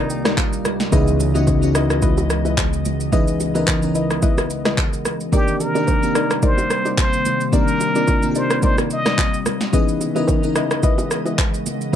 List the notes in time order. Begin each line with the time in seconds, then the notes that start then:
Already playing: C2 C3 D#3 G3 A#3 C4 D4 D#4 F4 G4 A#4 D5 G5 A#5
0.10 G5, shaker
0.25 D#4 A#4 D5, cross-stick, snare, high bongo, low bongo, shaker
0.37 F5, kick, clap, high bongo, shaker
0.53 shaker
0.65 D#5, cross-stick, low conga, shaker
0.80 snare, shaker
0.91 C#2 C#3 E3 G#3 B3 C#4 D#4 E4 G#4 B4 D#5, kick, low conga, shaker
1.08 shaker
1.20 low bongo, shaker
1.34 E3 B3 C#4 D#4 E4 F#4 B4 D#5, low bongo, shaker
1.47 kick, high bongo, shaker
1.61 E3 B3 C#4 D#4 F#4, shaker
1.75 E4 B4 D#5, cross-stick, shaker
1.90 cross-stick, shaker
2.02 E4 B4 D#5, kick, low conga, shaker
2.18 low bongo, shaker
2.30 cross-stick, shaker
2.45 E4 B4 D#5, high bongo, low bongo, shaker
2.58 kick, clap, high bongo, shaker
2.73 shaker
2.85 low conga, shaker
3.00 shaker
3.12 E3 B3 C#4 D#4 E4 G#4 B4 D#5, kick, low conga, shaker
3.28 shaker
3.40 low bongo, shaker
3.54 E3 B3 C#4 D#4 E4 A#4 B4 D#5, low bongo, shaker
3.67 kick, clap, high bongo, shaker
3.82 E3 B3 C#4 D#4 A#4, shaker
3.95 E4 B4 D#5, shaker
4.10 cross-stick, shaker
4.22 E4 B4 D#5, kick, low conga, shaker
4.38 cross-stick, low bongo, shaker
4.50 shaker
4.65 E4 B4 D#5, cross-stick, snare, high bongo, low bongo, shaker
4.78 kick, clap, high bongo, shaker
4.93 shaker
5.05 cross-stick, low conga, shaker
5.20 shaker
5.32 C3 D#3 G3 A#3 C4 D4 D#4 G4 A#4 D5, kick, low conga, shaker
5.48 shaker
5.60 A#4, low bongo, shaker
5.74 D#3 A#3 C4 D4 D#4 G4 A#4 D5, low bongo, shaker
5.87 kick, high bongo, shaker
6.02 D#3 A#3 C4 D4 G4, shaker
6.15 D#4 A#4 D5, cross-stick, shaker
6.31 cross-stick, shaker
6.42 D#4 A#4 C5 D5, kick, low conga, shaker
6.58 low bongo, shaker
6.70 cross-stick, shaker
6.85 D#4 A#4 D5, high bongo, low bongo, shaker
6.98 C5, kick, clap, high bongo, shaker
7.13 shaker
7.25 low conga, shaker
7.41 shaker
7.52 D#3 A#3 C4 D4 D#4 G4 A#4 D5, kick, low conga, shaker
7.68 shaker
7.80 low bongo, shaker
7.95 D#3 A#3 C4 D4 D#4 F4 A#4 D5, low bongo, shaker
8.07 kick, high bongo, shaker
8.22 D#3 A#3 C4 D4 F4, shaker
8.31 G4
8.35 D#4 A#4 C5 D5, shaker
8.50 cross-stick, shaker
8.62 D#4 A#4 C5 D5, kick, low conga, shaker
8.78 cross-stick, low bongo, shaker
8.90 D#5, shaker
9.05 D#4 A#4 D5, cross-stick, snare, high bongo, low bongo, shaker
9.18 kick, clap, high bongo, shaker
9.34 shaker
9.46 cross-stick, low conga, shaker
9.61 snare, shaker
9.72 C#3 E3 G#3 B3 C#4 D#4 E4 G#4 B4 D#5, kick, low conga, shaker
9.88 shaker
10.01 low bongo, shaker
10.15 E3 B3 C#4 D#4 E4 A#4 B4 D#5, low bongo, shaker
10.28 kick, high bongo, shaker
10.43 E3 B3 C#4 D#4 A#4, shaker
10.55 E4 B4 D#5, cross-stick, shaker
10.71 cross-stick, shaker
10.83 E4 B4 D#5, kick, low conga, shaker
10.98 low bongo, shaker
11.11 cross-stick, shaker
11.26 E4 B4 D#5, high bongo, low bongo, shaker
11.38 kick, clap, high bongo, shaker
11.54 shaker
11.66 low conga, shaker
11.81 shaker
11.92 E3